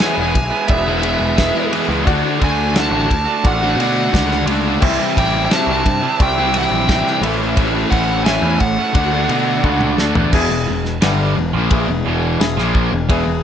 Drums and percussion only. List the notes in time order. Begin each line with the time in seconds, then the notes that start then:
0.00 snare, ride
0.35 kick, ride
0.68 kick, ride
1.03 ride
1.38 kick, snare, ride
1.73 ride
2.07 kick, ride
2.42 kick, ride
2.76 snare, ride
3.11 kick, ride
3.45 kick, ride
3.80 ride
4.14 kick, snare, ride
4.31 snare
4.47 ride
4.82 kick, crash
5.17 kick, ride
5.51 snare, ride
5.86 kick, ride
6.20 kick, ride
6.54 ride
6.89 kick, snare, ride
7.07 snare
7.23 ride
7.57 kick, ride
7.92 kick, ride
8.26 snare, ride
8.60 kick, ride
8.95 kick, ride
9.29 ride
9.64 kick
9.81 mid tom
9.98 snare
10.15 floor tom
10.33 kick, crash
10.85 snare
11.02 snare, ride bell
11.71 kick, ride bell
12.41 snare, ride bell
12.58 snare
12.75 kick
13.10 kick, ride bell